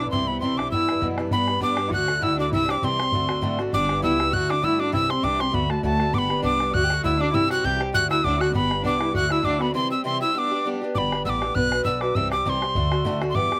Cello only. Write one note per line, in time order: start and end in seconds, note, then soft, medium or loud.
0.10 0.26 C4 medium
0.27 0.43 B3 medium
0.42 0.59 C4 medium
0.58 0.71 D4 medium
0.72 1.15 E4 medium
1.31 1.60 B3 medium
1.62 1.93 D4 medium
1.91 2.21 F#4 medium
2.22 2.37 E4 medium
2.38 2.51 D4 medium
2.51 2.67 E4 medium
2.68 2.81 D4 medium
2.82 3.55 C4 medium
3.72 4.01 D4 medium
4.03 4.31 E4 medium
4.33 4.52 F#4 medium
4.51 4.64 D4 medium
4.64 4.79 E4 medium
4.81 4.95 D4 medium
4.93 5.09 E4 medium
5.10 5.26 C4 medium
5.24 5.42 D4 medium
5.40 5.52 C4 medium
5.52 5.68 B3 medium
5.70 5.82 A3 medium
5.83 6.11 A3 medium
6.13 6.41 B3 medium
6.43 6.71 D4 medium
6.73 6.85 F#4 medium
6.84 6.95 G4 medium
6.93 7.05 F#4 medium
7.04 7.19 E4 loud
7.20 7.33 D4 medium
7.33 7.49 E4 medium
7.51 7.66 F#4 medium
7.64 7.81 G4 medium
7.94 8.10 F#4 medium
8.11 8.24 E4 medium
8.25 8.40 D4 medium
8.40 8.53 F#4 medium
8.54 8.82 B3 medium
8.83 8.99 D4 medium
9.00 9.13 E4 medium
9.14 9.30 F#4 medium
9.31 9.44 E4 medium
9.45 9.60 D4 medium
9.62 9.74 B3 medium
9.75 10.03 C4 medium
10.05 10.20 C4 medium
10.22 10.34 E4 medium
10.35 10.78 D4 medium